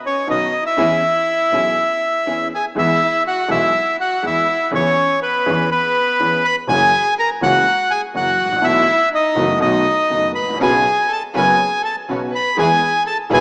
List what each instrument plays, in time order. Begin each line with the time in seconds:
0.05 violin C#4, bandoneon C#5
0.27 grand piano B1 B2 D#3 B3 C#4 F#4, double bass B1, string section C#4 D#4 B4, violin D#4, bandoneon D#5
0.66 violin E4, bandoneon E5
0.77 grand piano E2 E3 B3 C#4 G#4, double bass E2, string section C#4 E4 G#4
1.51 double bass B1, grand piano B1 B2 E3 B3 C#4 G#4, string section C#4 E4 G#4
2.26 grand piano E2 E3 B3 C#4 G#4, string section C#4 E4 G#4
2.55 violin G#4, bandoneon G#5
2.75 double bass E2, grand piano E2 E3 G#3 B3 G#4, bandoneon E5
2.80 violin E4
3.27 violin F#4, bandoneon F#5
3.48 grand piano B1 B2 E3 G#3 B3 G#4, double bass B1, violin E4, bandoneon E5
4.01 violin F#4, bandoneon F#5
4.22 grand piano E2 E3 G#3 B3 G#4, double bass E2, violin E4
4.27 bandoneon E5
4.71 grand piano E2 E3 B3 C#4 G#4, double bass E2, violin C#4, bandoneon C#5
5.22 violin B3, bandoneon B4
5.46 grand piano E2 E3 B3 C#4 G#4, double bass E2
5.71 violin B3, bandoneon B4
6.20 grand piano E2 E3 B3 C#4 G#4, double bass E2
6.44 violin B4, bandoneon B5
6.68 double bass F#1, grand piano F#2 E3 F#3 A#3 C#4 F#4, violin G#4, bandoneon G#5
7.18 violin A#4, bandoneon A#5
7.42 double bass C#2, grand piano C#2 C#3 E3 A#3 C#4 F#4, violin F#4, bandoneon F#5
7.91 violin G#4, bandoneon G#5
8.14 double bass F#1, grand piano F#2 E3 F#3 A#3 C#4 F#4, violin F#4, bandoneon F#5
8.39 double bass A1
8.44 grand piano G#1
8.52 grand piano A1 A#1
8.62 grand piano B1 B2 E3 A3 B3 F#4, double bass B1, violin E4, bandoneon E5
9.14 violin D#4, bandoneon D#5
9.36 double bass F#1, grand piano F#1 F#2 E3 A3 B3 F#4
9.60 grand piano B1 B2 D#3 A3 B3 F#4, double bass B1, violin D#4, bandoneon D#5
10.10 grand piano F#1 F#2 D#3 A3 B3 F#4, double bass F#1
10.34 double bass A1, violin B4, bandoneon B5
10.43 grand piano G#1
10.49 grand piano A1
10.54 grand piano A#1
10.59 grand piano B1 B2 C#3 F#3 B3 F#4, double bass B1, string section C#4 F#4 B4, violin G#4, bandoneon G#5
11.08 violin A4
11.12 bandoneon A5
11.34 grand piano F#1 F#2 C#3 F#3 B3 F#4, double bass F#1, string section C#4 F#4 B4, violin G#4, bandoneon G#5
11.82 violin A4, bandoneon A5
12.09 grand piano B1 B2 C#3 F#3 B3 F#4, double bass B1, string section C#4 F#4 B4
12.31 violin B4
12.35 bandoneon B5
12.56 grand piano E2 E3 G#3 B3 G#4, double bass E2, string section E4 G#4 B4, violin G#4, bandoneon G#5
13.06 violin A4, bandoneon A5
13.30 grand piano B1 B2 E3 G#3 B3 G#4, double bass B1, string section E4 G#4 B4, violin G#4, bandoneon G#5